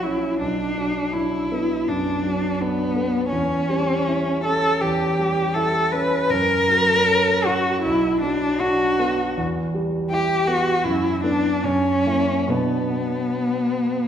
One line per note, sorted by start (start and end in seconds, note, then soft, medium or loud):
0.00 0.36 A#1 soft
0.00 0.42 F#3 soft
0.00 0.26 E4 soft
0.00 0.39 E4 medium
0.05 0.40 C#4 soft
0.40 1.83 B1 soft
0.40 1.15 D4 medium
0.78 1.36 F#3 soft
1.13 1.73 D4 soft
1.13 1.89 E4 medium
1.52 2.09 B3 soft
1.88 2.46 F#2 soft
1.88 2.63 D4 medium
2.23 2.81 F#3 soft
2.61 3.29 B3 medium
2.61 3.17 D4 soft
2.96 3.32 B3 soft
3.30 4.79 E2 soft
3.30 4.42 C#4 medium
3.69 4.30 G3 soft
4.08 4.68 E4 soft
4.44 5.04 C#4 soft
4.44 4.83 A4 medium
4.81 6.28 E2 soft
4.81 5.56 G4 medium
5.19 5.78 G3 soft
5.54 6.16 E4 soft
5.54 5.94 A4 medium
5.92 6.31 C#4 soft
5.92 6.32 B4 medium
6.30 7.80 F#2 medium
6.30 7.47 A#4 medium
6.68 7.30 F#3 soft
7.07 7.69 C#4 soft
7.46 7.81 F#4 medium
7.46 7.85 F#4 soft
7.82 9.34 B1 soft
7.82 8.21 E4 medium
8.21 8.84 F#3 soft
8.21 8.61 D4 medium
8.60 9.22 D4 soft
8.60 9.37 F#4 medium
8.99 9.37 B3 soft
9.37 10.83 E2 medium
9.74 10.34 G3 soft
10.10 10.71 E4 soft
10.10 10.49 G4 medium
10.47 10.86 B3 soft
10.47 10.86 F#4 medium
10.84 11.62 F#2 soft
10.84 11.23 E4 medium
11.24 11.60 B3 soft
11.24 11.65 D4 medium
11.24 11.60 D4 soft
11.64 12.48 F#2 medium
11.64 12.51 C#4 medium
12.06 12.47 A#3 soft
12.06 12.47 E4 soft
12.47 14.08 B2 soft
12.47 14.08 F#3 soft
12.47 14.08 B3 soft
12.47 14.08 B3 medium
12.47 14.08 D4 soft